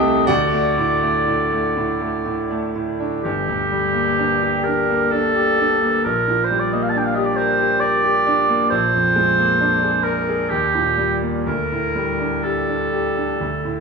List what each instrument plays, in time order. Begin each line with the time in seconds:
Already playing: grand piano C2 C3 A3 G4 A4 D#5 G5 A5, oboe D#5
0.03 grand piano A3
0.26 grand piano D2 F#4 D5 F#5, oboe D5
0.53 grand piano A3
0.77 grand piano A2
1.03 grand piano A3
1.27 grand piano A2
1.52 grand piano A3
1.77 grand piano A2
2.01 grand piano A3
2.25 grand piano A2
2.51 grand piano A3
2.75 grand piano A2
3.00 grand piano D4
3.22 grand piano G1, oboe G4
3.48 grand piano D2
3.72 grand piano G3
3.94 grand piano A#3
4.18 grand piano D4
4.43 grand piano G4
4.64 grand piano D4, oboe A#4
4.90 grand piano A#3
5.11 grand piano D4, oboe A4
5.36 grand piano G4
5.59 grand piano D4
5.82 grand piano A#3
6.04 grand piano A#1, oboe A#4
6.28 grand piano A#2
6.45 oboe C5
6.50 grand piano G3
6.59 oboe D5
6.72 grand piano A#3, oboe D#5
6.83 oboe F5
6.89 oboe A5
6.95 grand piano D4, oboe G5
7.05 oboe F5
7.15 grand piano G4, oboe D#5
7.25 oboe D5
7.36 grand piano A#4, oboe C5
7.59 grand piano G4
7.80 grand piano A#4, oboe D5
8.04 grand piano G4
8.26 grand piano D4
8.49 grand piano A#3
8.70 grand piano A#1, oboe C5
8.95 grand piano F2
9.16 grand piano G#3
9.39 grand piano A#3
9.61 grand piano D4
9.83 grand piano G#4
10.04 oboe A#4, grand piano A#4
10.29 grand piano G#4
10.50 grand piano D#2, oboe G4
10.75 grand piano A#2
10.97 grand piano G3
11.22 grand piano A#3
11.45 grand piano D2, oboe A#4
11.72 grand piano A2
11.95 grand piano G3
12.20 grand piano D4
12.43 grand piano G4, oboe A4
12.68 grand piano D4
12.92 grand piano G4
13.17 grand piano D4
13.40 grand piano D2
13.65 grand piano A2